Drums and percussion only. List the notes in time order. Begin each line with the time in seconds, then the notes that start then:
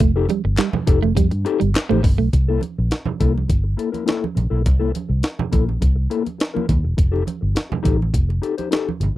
0.00 kick, closed hi-hat, muted conga
0.29 closed hi-hat, high conga
0.57 snare, clap, closed hi-hat
0.73 high conga, low conga
0.87 kick, closed hi-hat, low conga
1.03 high conga
1.17 kick, closed hi-hat
1.31 closed hi-hat
1.46 closed hi-hat
1.61 closed hi-hat
1.75 snare, clap, closed hi-hat, muted conga
1.91 muted conga, high conga
2.03 kick, open hi-hat, low conga
2.33 kick, closed hi-hat, muted conga
2.61 closed hi-hat, high conga
2.91 snare, closed hi-hat, muted conga
3.06 high conga, low conga
3.21 kick, closed hi-hat, low conga
3.38 high conga
3.50 kick, closed hi-hat
3.79 closed hi-hat
3.94 closed hi-hat, high conga
4.08 snare, closed hi-hat, muted conga
4.24 muted conga, high conga
4.37 closed hi-hat, low conga
4.66 kick, closed hi-hat, muted conga
4.95 closed hi-hat, high conga
5.23 snare, closed hi-hat
5.39 high conga, low conga
5.53 kick, closed hi-hat, low conga
5.69 high conga
5.82 kick, closed hi-hat
6.11 closed hi-hat
6.26 closed hi-hat, high conga
6.40 snare, closed hi-hat
6.57 muted conga, high conga
6.69 kick, closed hi-hat, low conga
6.98 kick, closed hi-hat
7.16 muted conga
7.27 closed hi-hat, high conga
7.56 snare, closed hi-hat, muted conga
7.72 high conga, low conga
7.85 kick, closed hi-hat, low conga
8.02 high conga
8.14 kick, closed hi-hat, muted conga
8.30 muted conga
8.43 closed hi-hat
8.58 closed hi-hat, high conga
8.72 snare, closed hi-hat, muted conga
8.89 high conga
9.01 closed hi-hat, low conga